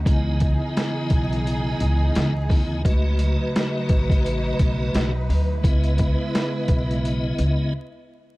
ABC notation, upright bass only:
X:1
M:4/4
L:1/16
Q:"Swing 16ths" 1/4=86
K:C#m
V:1 name="Upright bass" clef=bass
C,,3 z3 B,,,4 C,,2 C,,2 =D,,2 | C,,3 z3 A,,,4 B,,,2 B,,,2 =D,,2 | C,,3 z3 B,,,4 C,,2 z4 |]